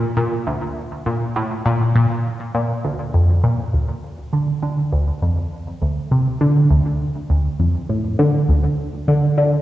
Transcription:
0.17 A#2
0.47 D2
1.06 A#2
1.36 A2
1.66 A#2
1.95 A#2
2.55 A#2
2.84 D2
3.14 F2
3.44 A#2
3.73 D2
4.33 D3
4.63 D3
4.92 D2
5.22 F2
5.82 D2
6.11 C3
6.41 D3
6.71 D2
7.30 D2
7.60 F2
7.89 A2
8.19 D3
8.49 D2
9.08 D3
9.38 D3

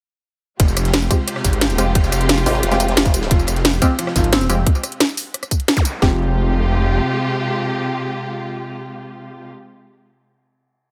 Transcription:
0.60 F1 C3 G#3 F4 G4, kick, closed hi-hat, ride
0.68 tambourine
0.77 F1, cross-stick, closed hi-hat, ride, tambourine
0.85 snare, closed hi-hat
0.94 snare, closed hi-hat, ride
1.02 tambourine
1.10 G#3 C4 F4 G4, kick, closed hi-hat, ride, tambourine
1.28 cross-stick, closed hi-hat, ride
1.36 cross-stick, snare
1.44 G#1, kick, snare, closed hi-hat, ride, tambourine
1.53 closed hi-hat
1.61 snare, closed hi-hat, ride
1.70 closed hi-hat, tambourine
1.78 F1 G#3 C4 F4 G4, cross-stick, closed hi-hat, ride, tambourine
1.95 kick, closed hi-hat, ride
2.03 snare, tambourine
2.12 F1, cross-stick, closed hi-hat, ride, tambourine
2.21 closed hi-hat
2.29 snare, closed hi-hat, ride
2.37 ride, tambourine
2.46 G#1 G#3 C4 F4 G4, open hi-hat, tambourine
2.55 ride
2.63 F1, cross-stick, closed hi-hat, ride
2.71 G#3 C4 F4 G4, cross-stick, snare, closed hi-hat, tambourine
2.80 closed hi-hat, ride, tambourine
2.88 snare, closed hi-hat
2.97 F1, snare, closed hi-hat, ride
3.05 kick, snare, closed hi-hat, tambourine
3.14 closed hi-hat, ride, tambourine
3.22 snare, ride
3.31 F1 F3, kick, closed hi-hat, ride
3.39 tambourine
3.47 F1, cross-stick, closed hi-hat, ride, tambourine
3.56 snare, closed hi-hat
3.65 snare, closed hi-hat, ride
3.73 tambourine
3.82 G#3 C4 F4 G4, kick, closed hi-hat, ride, tambourine
3.99 F3, cross-stick, closed hi-hat, ride
4.07 cross-stick, snare
4.16 G#1 F3, kick, snare, closed hi-hat, ride, tambourine
4.24 closed hi-hat
4.32 C4, snare, closed hi-hat, ride
4.41 closed hi-hat, tambourine
4.50 F1 G#3 C4 F4 G4, cross-stick, closed hi-hat, ride, tambourine
4.67 kick, closed hi-hat
4.75 tambourine
4.83 cross-stick, closed hi-hat, tambourine
4.92 closed hi-hat
5.00 snare, closed hi-hat
5.09 tambourine
5.17 open hi-hat, tambourine
5.34 cross-stick, closed hi-hat
5.43 cross-stick, closed hi-hat, tambourine
5.51 kick, closed hi-hat, tambourine
5.60 closed hi-hat
5.68 snare, closed hi-hat
5.77 kick, closed hi-hat, tambourine, zap
5.85 closed hi-hat, tambourine
6.02 F1 C3 F3 G#3 C4 F4 G4, kick, snare

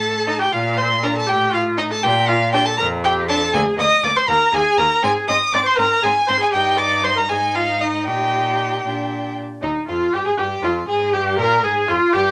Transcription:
Already playing: A2 A4 A5
0.27 D#4
0.39 G4 G5
0.52 A#2 F4 F5
0.77 C5 C6
1.02 D4 A#4 A#5
1.14 A4 A5
1.27 A2 G4 G5
1.53 F4 F5
1.77 D#4 D#5
1.91 A4 A5
2.03 A#2 G4 G5
2.28 F4 F5
2.52 D4 G4 G5
2.65 A4 A5
2.78 F2 A#4 A#5
3.04 G4 G5
3.28 D4 A4 A5
3.53 D2 A#3 G#4 G#5
3.77 D2 A#3 D#5 D#6
4.02 D2 A#3 D5 D6
4.16 C5 C6
4.28 D#2 A#3 A#4 A#5
4.53 D#2 A#3 G#4 G#5
4.78 D#2 A#3 A#4 A#5
5.02 G#2 C4 G#4 G#5
5.28 G#2 C4 D#5 D#6
5.52 G#2 C4 D5 D6
5.65 C5 C6
5.77 G#2 C4 A#4 A#5
6.02 G#2 C4 G#4 G#5
6.27 G#2 C4 C5 C6
6.40 G#4 G#5
6.52 G2 D#4 G4 G5
6.77 D5 D6
7.04 C5 C6
7.16 A#4 A#5
7.29 G#2 D#4 G#4 G#5
7.55 F4 F5
7.80 D#4 D#5
8.06 A#2 D#4 G4 G5
8.85 A#2 D4
9.62 D#2 D#4
9.87 F2 F4
10.13 G2 G4
10.26 G#2 G#4
10.37 G2 G4
10.62 F2 F4
10.87 G#2 G#4
11.13 G2 G4
11.38 A#2 A#4
11.63 G#2 G#4
11.88 F2 F4
12.13 G2 G4

